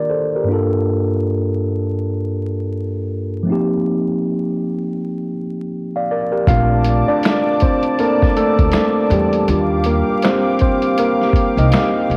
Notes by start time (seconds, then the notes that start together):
Already playing: D#3 A#3 D4 F4 A#4 D5
0.10 A4 C5
0.35 G4 A#4
0.44 G2 A#3
0.49 D4 F4
0.53 A4
3.43 F3 A3
3.47 C4 D#4
3.52 A#3 G4
5.96 D5 F5
6.11 A#4 D5
6.32 G4 A#4
6.47 A#1 A3 C4 D4 F4 D5 F5 A5 D6, kick, closed hi-hat
6.84 closed hi-hat
7.08 D4 D5
7.23 finger snap, snare, closed hi-hat
7.60 C4 C5, kick, closed hi-hat
7.83 closed hi-hat
7.99 A#3 C4 D4 A4 A#4, closed hi-hat
8.22 kick, snare
8.37 A3 A4, closed hi-hat
8.59 D2, kick, closed hi-hat
8.72 finger snap, snare, closed hi-hat
9.10 E2 G3 G4, closed hi-hat
9.33 closed hi-hat
9.48 D#2 G3 D4 F4 G4 F5 D6, closed hi-hat
9.84 A#3 A#4, closed hi-hat
10.22 C4 C5, finger snap, snare, closed hi-hat
10.59 C4 C5, kick, closed hi-hat
10.82 closed hi-hat
10.98 A#3 A#4, closed hi-hat
11.22 snare
11.33 kick, closed hi-hat
11.57 C2 D#4 D#5, closed hi-hat
11.72 finger snap, snare, closed hi-hat
12.10 G#1, closed hi-hat